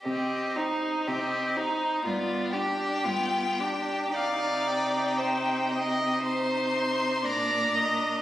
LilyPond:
<<
  \new Staff \with { instrumentName = "Violin" } { \time 4/4 \key c \minor \tempo 4 = 59 ees''8 c''8 ees''8 c''8 d''8 g''4. | f''8 g''4. c'''4 bes''4 | }
  \new Staff \with { instrumentName = "Violin" } { \time 4/4 \key c \minor g'8 ees'8 g'8 ees'8 f'8 g'8 f'8 g'8 | d''4 c''8 ees''8 c''4 d''8 ees''8 | }
  \new Staff \with { instrumentName = "Viola" } { \time 4/4 \key c \minor c'8 ees'8 c'8 ees'8 b8 d'8 b8 d'8 | ees'2 ees'4 d'4 | }
  \new Staff \with { instrumentName = "Cello" } { \clef bass \time 4/4 \key c \minor c4 c4 g,4 g,4 | c2. bes,4 | }
>>